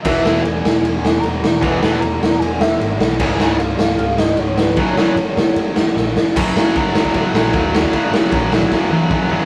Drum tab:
CC |x---------------|----------------|x---------------|----------------|
RD |----x---x---x---|x---x---x---x---|----x---x---x---|x---x---x-------|
SD |--o---o---o---o-|--o---o---o---o-|--o---o---o---o-|--o---o---o-o-o-|
T1 |----------------|----------------|----------------|----------------|
T2 |----------------|----------------|----------------|----------------|
FT |----------------|----------------|----------------|----------------|
BD |o---------------|o---------------|o---------------|o---------------|

CC |x---------------|----------------|
RD |----x---x---x---|x---x-----------|
SD |--o---o---o---o-|--o---o-o-------|
T1 |----------------|----------o-----|
T2 |----------------|------------o---|
FT |----------------|--------------o-|
BD |o---o--oo---o--o|o---o--oo---o---|